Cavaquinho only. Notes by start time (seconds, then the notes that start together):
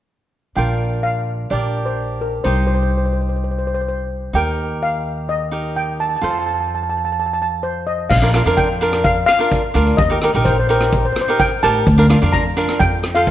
0.55 D4 F4 A#4
1.50 D4 G4 A#4
2.44 D#4 G4 C5
4.33 D#4 G4 A#4
5.51 D#4 G4 A#4
6.21 F4 A4 C5
8.22 D4 F4 A#4
8.34 D4 F4 A#4
8.46 D4 F4 A#4
8.81 D4 F4 A#4
9.39 D4 F4 A#4
9.74 D4 F4 A#4
10.10 D#4 G4 A#4
10.23 D#4 G4 A#4
10.34 D#4 G4 A#4
10.69 D#4 G4 A#4
11.28 D#4 G4 A#4
11.63 D#4 G4 A#4
11.98 D4 F4 A#4
12.09 D4 F4 A#4
12.22 D4 F4 A#4
12.56 D4 F4 A#4
13.15 F4 A4 C5